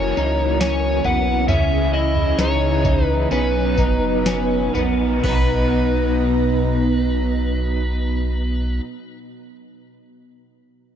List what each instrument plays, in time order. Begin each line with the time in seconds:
Already playing: sub bass F#1, overdriven electric guitar F#2 C#3 E3 A#3 C#4 A#4, string machine E3 F#3 C#4 A#4, clean electric guitar C#4, electric slide guitar C#5
0.17 sub bass C#2, clean electric guitar D#4, tambourine
0.61 clean electric guitar C#4, electric slide guitar C#5, snare, tambourine
1.04 sub bass B1, clean electric guitar B3, electric slide guitar F#5, floor tom, tambourine
1.48 sub bass C#2, overdriven electric guitar C#3 E3 C#4 E4 G#4, string machine C#3 G#4, clean electric guitar C#4, electric slide guitar E5, floor tom, tambourine
1.94 clean electric guitar E4, electric slide guitar D#5
2.16 floor tom
2.38 sub bass C#2, overdriven electric guitar E3 C#4 E4, clean electric guitar D#4, electric slide guitar C#5, snare, tambourine
2.42 overdriven electric guitar G#4
2.85 clean electric guitar D#4, kick, floor tom, tambourine
3.03 electric slide guitar B4
3.30 sub bass B1, overdriven electric guitar B2 F#3 B3 D#4, string machine F#3 B3 D#4, clean electric guitar C#4, electric slide guitar B4, tambourine
3.78 sub bass F#1, clean electric guitar D#4, kick, tambourine
4.26 clean electric guitar C#4, snare, tambourine
4.73 sub bass A#1, clean electric guitar B3, overdriven electric guitar D#4 A#4, floor tom, tambourine
4.77 overdriven electric guitar B3
5.19 overdriven electric guitar B2
5.24 sub bass B1, string machine B2 B3 D#4 A#5, overdriven electric guitar F#3 B3, clean electric guitar B3, electric slide guitar B4, kick, crash
5.28 clean electric guitar D#4 F#4, overdriven electric guitar D#4
5.36 clean electric guitar B4